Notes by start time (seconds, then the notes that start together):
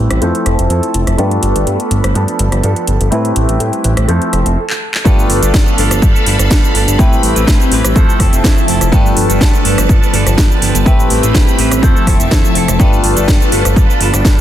Already playing: G3 A3 C4 E4 G4 B4 G5
0.11 A1, cross-stick, closed hi-hat
0.21 F2 F3 A3 C4 E4 A4 C5 E6, closed hi-hat
0.35 closed hi-hat
0.46 F1, cross-stick, closed hi-hat
0.59 F1, closed hi-hat
0.69 F2 C4 E4 A4, closed hi-hat
0.83 closed hi-hat
0.94 F1, closed hi-hat
1.07 F1, cross-stick, closed hi-hat
1.18 G2 F3 A3 B3 D4 F4 G4 A4 B4 B5, closed hi-hat
1.31 closed hi-hat
1.42 G1 B3 D4 A4, closed hi-hat
1.55 G1, closed hi-hat
1.67 G2, closed hi-hat
1.80 closed hi-hat
1.91 G1, closed hi-hat
2.04 G1, cross-stick, closed hi-hat
2.15 G2 F3 B3 D4 A4, closed hi-hat
2.28 closed hi-hat
2.39 G1, closed hi-hat
2.52 G1, cross-stick, closed hi-hat
2.63 G2 F3 B3 D4 A4, closed hi-hat
2.76 closed hi-hat
2.87 G1, closed hi-hat
3.01 G1, closed hi-hat
3.11 A2 G3 A3 C4 E4 G4 B4 G5, closed hi-hat
3.15 B4
3.25 closed hi-hat
3.36 A1, closed hi-hat
3.49 A1, closed hi-hat
3.60 A2, closed hi-hat
3.73 closed hi-hat
3.84 A1, closed hi-hat
3.97 A1, cross-stick, closed hi-hat
4.08 F2 F3 A3 C4 E4 A4 C5, closed hi-hat
4.22 closed hi-hat
4.33 F1, cross-stick, closed hi-hat
4.46 F1, closed hi-hat
4.70 clap
4.94 clap
5.05 G2 F3 A3 B3 D4 F4 G4 A4 B4 F5 B5, kick, closed hi-hat, cabasa
5.19 cabasa
5.30 G1, open hi-hat
5.42 G1 B3 D4 A4, closed hi-hat, cabasa
5.54 G2 F3 B3 D4 A4, kick, snare, closed hi-hat, cabasa
5.68 cabasa
5.78 G1 F3 B3 D4 A4, open hi-hat
5.91 G1, cross-stick, closed hi-hat, cabasa
6.02 G2 B3 D4 A4, kick, closed hi-hat, cabasa
6.14 B3 D4 A4, cabasa
6.26 G1 F3 B3 D4 A4, open hi-hat
6.39 G1 B3 D4 A4, cross-stick, closed hi-hat, cabasa
6.50 G2 F3 B3 D4 A4, kick, snare, closed hi-hat, cabasa
6.64 cabasa
6.74 G1 F3 B3 D4 A4, open hi-hat
6.88 G1, closed hi-hat, cabasa
6.98 A2 G3 A3 C4 E4 G4 B4, kick, closed hi-hat, cabasa
7.13 cabasa
7.23 A1, open hi-hat
7.35 A1 C4 E4 B4, closed hi-hat, cabasa
7.47 A2 G3 C4 E4 B4, kick, snare, closed hi-hat, cabasa
7.61 cabasa
7.71 A1 G3 C4 E4 B4, open hi-hat
7.84 A1, cross-stick, closed hi-hat, cabasa
7.95 F2 F3 A3 C4 E4 A4 C5 E5 A5, kick, closed hi-hat, cabasa
8.08 E4 A4, cabasa
8.19 F1 C4 E4 A4, kick, cross-stick, open hi-hat
8.33 F1, closed hi-hat, cabasa
8.44 F2 C4 E4 A4, kick, snare, closed hi-hat, cabasa
8.58 cabasa
8.68 F1 C4 E4 A4, open hi-hat
8.81 F1, cross-stick, closed hi-hat, cabasa
8.92 G2 F3 A3 B3 D4 F4 G4 A4 B4, kick, closed hi-hat, cabasa
9.06 cabasa
9.17 G1, open hi-hat
9.29 G1 B3 D4 A4, closed hi-hat, cabasa
9.40 G2 F3 B3 D4 A4, kick, snare, closed hi-hat, cabasa
9.55 cabasa
9.64 G1 F3 B3 D4 A4, open hi-hat
9.78 G1, cross-stick, closed hi-hat, cabasa
9.88 G2 F3 B3 D4 A4, kick, closed hi-hat, cabasa
10.01 B3 D4 A4, cabasa
10.13 G1 F3 B3 D4 A4, open hi-hat
10.26 G1 B3 D4 A4, cross-stick, closed hi-hat, cabasa
10.37 G2 F3 B3 D4 A4, kick, snare, closed hi-hat, cabasa
10.52 cabasa
10.61 G1 F3 B3 D4 A4, open hi-hat
10.75 G1, closed hi-hat, cabasa
10.85 A2 G3 A3 C4 E4 G4 B4 B5, kick, closed hi-hat, cabasa
11.00 cabasa
11.10 A1, open hi-hat
11.23 A1 C4 E4 B4, closed hi-hat, cabasa
11.34 A2 G3 C4 E4 B4, kick, snare, closed hi-hat, cabasa
11.48 cabasa
11.58 A1 G3 C4 E4 B4, open hi-hat
11.71 A1, cross-stick, closed hi-hat, cabasa
11.82 F2 F3 A3 C4 E4 A4 C5 E5 A5, kick, closed hi-hat, cabasa
11.95 E4 A4, cabasa
12.06 F1 C4 E4 A4, kick, cross-stick, open hi-hat
12.20 F1, closed hi-hat, cabasa
12.31 F2 C4 E4 A4, kick, snare, closed hi-hat, cabasa
12.45 cabasa
12.55 F1 C4 E4 A4, open hi-hat
12.68 F1, cross-stick, closed hi-hat, cabasa
12.79 G2 F3 A3 B3 D4 F4 G4 A4 B4, kick, closed hi-hat, cabasa
12.93 cabasa
13.04 G1, open hi-hat
13.16 G1 B3 D4 A4, closed hi-hat, cabasa
13.28 G2 F3 B3 D4 A4, kick, snare, closed hi-hat, cabasa
13.42 cabasa
13.51 G1 F3 B3 D4 A4, open hi-hat
13.65 G1, cross-stick, closed hi-hat, cabasa
13.76 G2 F3 B3 D4 A4, kick, closed hi-hat, cabasa
13.89 B3 D4 A4, cabasa
14.00 G1 F3 B3 D4 A4, open hi-hat
14.13 G1 B3 D4 A4, cross-stick, closed hi-hat, cabasa
14.24 F3 B3 D4 A4, kick, snare, closed hi-hat, cabasa